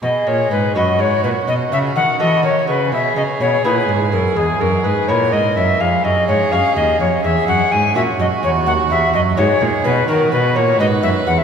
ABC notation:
X:1
M:12/8
L:1/16
Q:3/8=84
K:B
V:1 name="Recorder"
d2 c2 B2 d2 c2 B2 d2 e2 f2 d2 c2 B2 | e2 d2 c2 B4 A2 G2 A2 B2 c2 d2 e2 | ^e2 d2 c2 e2 d2 c2 =e2 f2 g2 e2 d2 c2 | f2 e2 d2 c4 B2 A2 B2 c2 d2 e2 f e |]
V:2 name="Violin"
G6 F6 F12 | G16- G2 A6 | G12 G6 F6- | F6 G6 F6 B6 |]
V:3 name="Lute"
z6 [FB]6 z6 [F=A]6 | z6 [B,EG]6 G,6 [B,EG]6 | z6 [CG]6 z6 [CF]6 | z6 [B,DF]6 B,6 [B,DF]6 |]
V:4 name="Lute" clef=bass
B,,2 A,,2 G,,2 F,,2 G,,2 A,,2 B,,2 C,2 D,2 E,2 D,2 C,2 | B,,2 C,2 B,,2 A,,2 G,,2 F,,2 E,,2 F,,2 G,,2 A,,2 G,,2 F,,2 | ^E,,2 F,,2 G,,2 F,,2 D,,2 E,,2 =E,,2 F,,2 G,,2 A,,2 F,,2 E,,2 | D,,2 E,,2 F,,2 G,,2 A,,2 B,,2 D,2 B,,2 A,,2 G,,2 F,,2 E,,2 |]
V:5 name="Cello" clef=bass
B,,2 A,,2 G,,2 F,,2 G,,2 A,,2 B,,2 C,2 D,2 E,2 D,2 C,2 | B,,2 C,2 B,,2 A,,2 G,,2 F,,2 E,,2 F,,2 G,,2 A,,2 G,,2 F,,2 | ^E,,2 F,,2 G,,2 F,,2 D,,2 E,,2 =E,,2 F,,2 G,,2 A,,2 F,,2 E,,2 | D,,2 E,,2 F,,2 G,,2 A,,2 B,,2 D,2 B,,2 A,,2 G,,2 F,,2 E,,2 |]